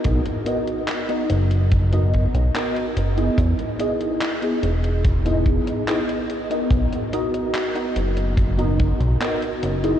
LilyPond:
<<
  \new Staff \with { instrumentName = "FM electric piano" } { \time 4/4 \key b \major \tempo 4 = 72 <b dis' fis' ais' dis''>8 <b dis' fis' ais' dis''>8. <b dis' fis' ais' dis''>16 r8. <b dis' fis' ais' dis''>8. <b dis' fis' ais' dis''>8. <b dis' e' gis' dis''>16~ | <b dis' e' gis' dis''>8 <b dis' e' gis' dis''>8. <b dis' e' gis' dis''>16 r8. <b dis' e' gis' dis''>8. <b dis' e' gis' dis''>8. <b dis' fis' ais' dis''>16~ | <b dis' fis' ais' dis''>8 <b dis' fis' ais' dis''>8. <b dis' fis' ais' dis''>16 r8. <b dis' fis' ais' dis''>8. <b dis' fis' ais' dis''>8. <b dis' e' gis' dis''>16 | }
  \new Staff \with { instrumentName = "Analog synth bass" } { \clef bass \time 4/4 \key b \major b,,16 r4 r16 fis,,4~ fis,,16 b,,16 r8 fis,,8 | e,16 r4 r16 e,,4~ e,,16 r4 r16 | b,,16 r4 r16 fis,,4~ fis,,16 b,,16 r8 fis,,8 | }
  \new DrumStaff \with { instrumentName = "Drums" } \drummode { \time 4/4 <hh bd>16 hh16 hh16 hh16 <hc hh>16 hh16 hh16 hh16 <hh bd>16 hh16 <hh bd>16 hh16 <hc hh>16 hh16 hh16 hh16 | <hh bd>16 hh16 hh16 hh16 <hc hh>16 hh16 hh16 hh16 <hh bd>16 hh16 <hh bd>16 hh16 <hc hh>16 hh16 hh16 hh16 | <hh bd>16 hh16 hh16 hh16 <hc hh>16 hh16 hh16 hh16 <hh bd>16 hh16 <hh bd>16 hh16 <hc hh>16 hh16 hh16 hh16 | }
>>